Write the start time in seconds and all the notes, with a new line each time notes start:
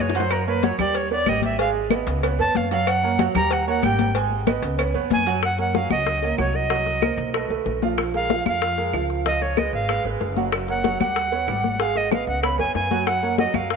0.00 F#2 C#5
0.09 low bongo
0.15 F#3 F#4 C5 F#5, cowbell, high conga
0.20 low bongo
0.30 A#4, cowbell, high conga, claves
0.47 A#3 A#4 B4 C#5, high conga
0.63 F#3 F#4 C#5 F#5, cowbell, high conga
0.78 D#2 G3 G4 D5 G5, cowbell, low conga, claves
0.95 C#5, cowbell, high conga
1.11 B3 B4 C#5 D5, high conga
1.26 G#1 G3 G4 D#5 G5, cowbell, high conga, claves
1.42 E5, cowbell, high conga
1.59 G#3 G#4 F5 G#5, cowbell, high conga
1.74 high conga
1.90 B3 B4 D#5, cowbell, high conga, claves
2.07 C#2, cowbell, high conga
2.23 B3 B4 C#5, cowbell, high conga, claves
2.38 F2 B3 B4 C#5 A5, high conga
2.55 F#2 F5, cowbell, high conga
2.71 F#3 F#4 F5 F#5, cowbell, high conga
2.87 F#5, cowbell, high conga, claves
3.03 A#3 A#4 C#5, high conga
3.19 F#3 F#4 F#5, cowbell, high conga
3.35 D#2 G3 G4 G5 A#5, cowbell, low conga, claves
3.51 F#5, cowbell, high conga
3.67 A#3 A#4 C#5 F#5, high conga
3.83 G#1 G3 G4 G5, cowbell, high conga, claves
3.99 cowbell, high conga
4.15 G#3 G#4 G#5, cowbell, high conga
4.31 high conga
4.47 B3 B4 D#5, cowbell, high conga, claves
4.62 C#2, cowbell, high conga
4.78 B3 B4 C#5, cowbell, high conga, claves
4.94 F2 B3 B4 C#5, high conga
5.10 F#2 G#5, cowbell, high conga
5.26 F#3 F#4 F#5, cowbell, high conga
5.43 F#5, high bongo, high conga, claves
5.59 A#3 A#4 C#5 F#5, high bongo, high conga
5.75 F#3 F#4 F5 F#5, high bongo, high conga
5.90 C#2 F#3 F#4 D#5 F#5, high conga, claves
6.06 high bongo, high conga
6.22 A#3 A#4 C#5, high bongo, high conga
6.38 C2 F#3 F#4 C#5 F#5, high bongo, low bongo, high conga, claves
6.54 D#5, high bongo
6.70 F#3 F#4 F#5, high bongo, high conga
6.86 high bongo, high conga
7.02 A#3 A#4 C5, high bongo, high conga, claves
7.17 B1, high conga
7.34 A3 A4 B4, high bongo, high conga, claves
7.49 B1 A3 A4 B4, high bongo, high conga
7.66 A#1, high bongo, low bongo, high conga
7.82 F3 F4 F5, high bongo, high conga
7.98 high bongo, high conga, claves
8.14 G#3 G#4 A#4 F5, high bongo, high conga
8.30 F3 F4 F5, high bongo, high conga
8.46 F2 F3 F4 F5, high conga, claves
8.62 high bongo, high conga
8.78 G#3 G#4 A#4, high bongo, high conga
8.93 C#2 F3 F4 F5, high bongo, low bongo, high conga, claves
9.10 high bongo
9.25 F3 F4 D#5 F5, high bongo, high conga
9.42 C#5, high bongo, high conga
9.57 G#3 G#4 B4 D#5, high bongo, high conga, claves
9.73 G#1 F5, high conga
9.89 G#3 G#4 B4, high bongo, high conga, claves
10.04 G#1 G#3 G#4 B4, high bongo, high conga
10.20 F#1, high bongo, low bongo, high conga
10.37 F#3 F#4 F#5, high bongo, high conga
10.52 high bongo, high conga, claves
10.68 A#3 A#4 C#5 F#5, high bongo, high conga
10.84 F#3 F#4 F#5, high bongo, high conga
11.00 D#2 G3 G4 F#5, high conga, claves
11.16 high bongo, high conga
11.32 B3 B4 C#5, high bongo, high conga
11.47 G#1 G3 G4 F#5, high bongo, low bongo, high conga, claves
11.64 high bongo, high conga
11.80 G#3 G#4 F5 G#5, high bongo, high conga
11.95 D#5, high bongo, high conga
12.11 B3 B4 D#5 F5, high bongo, high conga, claves
12.27 C#2 F#5, high conga
12.43 B3 B4 C#5 B5, high bongo, high conga, claves
12.59 F2 B3 B4 C#5 G#5, high bongo, high conga
12.74 F#2 G#5, high bongo, low bongo, high conga
12.91 F#3 F#4 F#5, high bongo, high conga
13.07 F#5, high bongo, high conga, claves
13.23 A#3 A#4 C#5, high bongo, high conga
13.38 F#3 F#4 D#5 F#5, high bongo, high conga
13.54 F#2 F#3 F#4 F5 F#5, high conga, claves
13.70 F5, high bongo, high conga